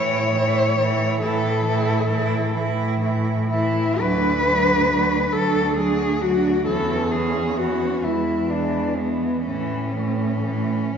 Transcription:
Already playing: A2 E3 E4 C#5
0.32 E3 E4
0.77 E3 E4
1.22 A2 E3 E4 A4
1.65 E3 E4
2.09 E3 E4
2.53 A2 E3 E4
3.00 E3 E4
3.50 E3 E4
3.99 D2 F#3 D4 B4
4.45 F#3 D4
4.88 F#3 D4
5.32 D2 F#3 D4 A4
5.77 F#3 D4 G#4
6.22 F#3 D4 F#4
6.66 E2 E3 C#4 A4
7.11 E3 C#4 G#4
7.57 E3 C#4 F#4
8.03 E2 E3 G#3 E4
8.49 E3 G#3 D4
8.97 E3 G#3 B3
9.46 A2 E3 A3 C#4
9.95 E3 A3
10.44 E3 A3
10.94 A2

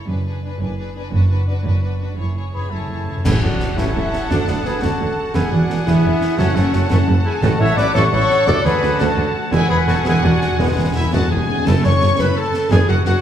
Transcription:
0.07 F#1 F#2 D4 G#4 B4
0.26 D4 G#4 B4
0.42 B3 D4 G#4 B4
0.59 F#1 F#2 D4 G#4 B4
0.77 D4 G#4 B4
0.93 B3 D4 G#4
0.97 B4
1.12 F#1 F#2 D4 F#4 B4
1.29 D4 F#4 B4
1.46 B3 D4 F#4 B4
1.64 F#1 F#2 D4 F#4 B4
1.82 D4 F#4 B4
2.00 B3 D4 F#4 B4
2.17 F#1 F#2 E4 G#4 C#5
2.26 F#2
2.33 F#2 E4 G#4 C#5
2.49 F#2 G#4
2.53 F#2 C#4 E4 G#4 B4 C#5 B5
2.63 F#2
2.70 F#1 F#2 E4 G#4 A4 C#5 A5
2.79 F#2
2.87 F#2 E4 G#4
2.91 F#2 C#5
3.02 F#2
3.07 F#2 C#4 E4 G#4 C#5
3.17 F#2
3.25 A1 A2 C#4 E4 G#4 A4 F#5 G#5 A5, concert bass drum, snare, crash
3.42 A1 A2 F#3 D4 F#4 F#5
3.60 A1 A2 A3, snare
3.77 A1 A2 C#4 E4 E5, concert bass drum, snare
3.95 A1 A2 F#3
4.13 snare
4.29 D2 D4 F#4 F#5, concert bass drum, snare
4.47 D2 F#3 B3 D4 D5, snare
4.64 D2 A3 G#4 B4 B5, snare
4.82 D2 D4 F#4 A4 A5, concert bass drum, snare
5.00 D2 F#3
5.34 E1 E2 B3 E4 G#4 F#5 G#5, concert bass drum, snare, crash
5.51 E1 E2 F#3 D4 F#4 F#5
5.69 E1 E2 G#3, snare
5.86 E1 E2 B3 E4 E5, concert bass drum, snare
6.04 E1 E2 F#3
6.21 snare
6.38 F#1 F#2 A3 C#4 F#4 F#5 A5, concert bass drum, snare
6.54 F#1 F#2 C#3 A3 C#4 C#5, snare
6.73 F#1 F#2 F#3, snare
6.89 F#1 F#2 A3 C#4 C#5, concert bass drum, snare
7.08 F#1 F#2 C#3
7.25 E4 G#4 G#5
7.41 A1 A2 A3 E4 F#4 A4 F#5 A5, concert bass drum, snare, crash
7.60 A1 A2 E3 C#5 E5 E6
7.77 A1 A2 F#3 B4 D5 D6, snare
7.95 A1 A2 A3 A4 C#5 C#6, concert bass drum, snare
8.12 A1 A2 E3 A4 C#5 C#6
8.30 snare
8.46 D2 A3 F#4 A4 D5 A5 D6, concert bass drum, snare
8.63 D2 D3 G#4 B4 B5, snare
8.82 D2 F#3, snare
8.99 D2 A3 F#4 A4 A5, concert bass drum, snare
9.17 D2 D3
9.51 E1 E2 G#3 E4 F#4 G#4 F#5 G#5, concert bass drum, snare, crash
9.60 E2
9.67 E1 E2 E3 G#4 B4 B5
9.75 E2
9.82 E2
9.87 E1 E2 F#3 F#4 A4 A5, snare
9.97 E2
10.04 E1 E2 G#3 E4 G#4 G#5, concert bass drum, snare
10.13 E2
10.20 E1 E2 E3 D4 F#4 F#5
10.27 E2
10.36 E2
10.41 E2, snare
10.51 E2
10.58 E1 E2 G#3 B3 B4, concert bass drum, snare
10.67 E2
10.75 E1 E2 E3
10.83 E2
10.90 E2
10.94 E1 E2 F#3 E4 E5
11.05 E2
11.12 E1 E2 G#3 F#4 F#5 A5, concert bass drum, snare
11.20 E2
11.28 E1 E2 E3 G#4 G#5
11.32 E2 G#4 G#5
11.43 E2
11.50 E2 F#5
11.59 E2
11.65 F#1 F#2 A3 E4 A4 A5, concert bass drum, snare, crash
11.84 F#1 F#2 G#3 D4 C#5 C#6, snare
12.01 F#1 F#2 A3 E4, snare
12.19 F#1 F#2 A3 E4 B4 B5, concert bass drum, snare
12.37 A4 A5
12.54 snare
12.70 F#1 F#2 B3 D4 G#4 G#5, concert bass drum, snare
12.88 F#1 F#2 A3 C#4 F#4 F#5
13.05 F#1 F#2 B3 D4 F#4 F#5, snare

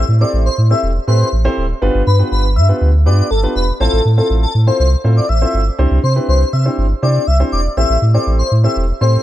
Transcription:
0.08 A2
0.21 C4 E4 G4 A4 C5 D5
0.33 A1
0.46 C5
0.58 A2
0.70 C4 E4 G4 A4 C5 E5
0.83 E1
1.07 A2 C4 E4 G4 A4 B4 C5
1.32 A1
1.45 C4 E4 G4 A4 C5
1.57 D1
1.82 G1 B3 D4 F4 G4 B4
1.94 G1
2.07 G2 B4
2.19 B3 D4 F4 G4 B4
2.32 G1 B4
2.56 G2 E5
2.69 B3 D4 F4 G4 B4
2.81 D2
3.06 G2 B3 D4 F4 G4 B4 D5
3.31 G1 A4
3.43 B3 D4 F4 G4 B4
3.56 E1 B4
3.80 A1 C4 E4 F4 A4 C5
3.93 A1
4.05 A2
4.17 C4 E4 F4 A4 C5
4.30 A1
4.42 A4
4.55 A2
4.67 C4 E4 F4 A4 C5
4.79 C2 C5
5.04 A2 C4 E4 F4 A4 C5
5.17 D5
5.29 A1 E5
5.41 C4 E4 F4 A4 C5
5.54 G1
5.78 C2 C4 D4 E4 G4 C5
5.91 C2
6.03 C3 C5
6.16 C4 D4 E4 G4 B4
6.28 C2 C5
6.53 C3 E5
6.65 C4 D4 E4 G4 C5
6.78 G1
7.02 C3 C4 D4 E4 G4 C5 D5
7.27 C2 E5
7.40 C4 D4 E4 G4 C5
7.52 E1 D5
7.77 A1 C4 E4 G4 A4 C5 E5
7.90 A1
8.02 A2
8.14 C4 E4 G4 A4 C5 D5
8.27 A1
8.39 C5
8.52 A2
8.64 C4 E4 G4 A4 C5 E5
8.76 E1
9.01 A2 C4 E4 G4 A4 C5

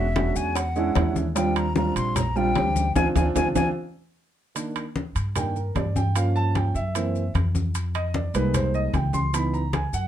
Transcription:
Already playing: E1 E5
0.16 G#3 C#4 D4 F#4, high bongo, high conga, high timbale, maracas
0.35 E2 G#5, high bongo, high conga, maracas
0.55 F#5, high bongo, high conga, high timbale, maracas
0.76 G#3 C#4 D4 E4, high bongo, high conga, maracas
0.95 D#2 G#3 C#4 D4 E4, high bongo, low bongo, high conga, high timbale, low timbale, maracas
1.16 high conga, maracas
1.35 G3 C4 D4 F4 G5, high bongo, high timbale, maracas
1.55 A#5, high bongo, high conga, high timbale, maracas
1.76 G3 C4 D4 F4 A#5, high bongo, high conga, maracas
1.96 A#1 C6, high timbale, maracas
2.16 A#5, high bongo, high conga, low conga, high timbale, maracas
2.36 G3 C4 D4 F4 G5, high bongo, high conga, maracas
2.55 D2 G3 C4 D4 G4, high bongo, low bongo, high conga, high timbale, low timbale, maracas
2.76 high bongo, high conga, maracas
2.95 D2 C4 D4 F4 G#5, low bongo, high conga, high timbale, maracas
3.15 D2 C4 D4 F4 G#5, low bongo, high conga, high timbale, maracas
3.35 D2 C4 D4 F4 G#5, low bongo, high conga, high timbale, maracas
3.55 D2 C4 D4 F4 G#5, low bongo, high conga, high timbale, maracas
4.55 D#3 A#3 D4, high conga, high timbale, maracas
4.76 high conga, high timbale, maracas
4.96 high conga, maracas
5.15 G2, high timbale, maracas
5.35 D#3 A#3 D4 G5, high conga, low conga, high timbale, maracas
5.56 A#4, high conga, maracas
5.75 G2 D5, high conga, high timbale, low timbale, maracas
5.96 G5, high conga, maracas
6.15 F3 A#3 C#4 F5, high conga, high timbale, maracas
6.36 A5, high conga, maracas
6.55 G5, high conga, high timbale, maracas
6.74 F#2 E5, high conga, maracas
6.95 E3 A#3 C4, high conga, high timbale, maracas
7.15 high conga, maracas
7.34 F2, high conga, high timbale, maracas
7.55 high conga, maracas
7.75 high conga, high timbale, maracas
7.94 D#5, high conga, high timbale, maracas
8.14 D5, high conga, maracas
8.34 C2 G3 G#3 A#3 D#4 B4, high timbale, maracas
8.54 C5, high conga, low conga, high timbale, maracas
8.74 D#5, high conga, maracas
8.93 C#2 G5, high conga, high timbale, maracas
9.13 C6, high conga, maracas
9.33 E3 B3 D#4 B5, high conga, high timbale, maracas
9.53 A#5, high conga, maracas
9.73 G#5, high conga, high timbale, maracas
9.93 F#2 F#5, high conga, maracas

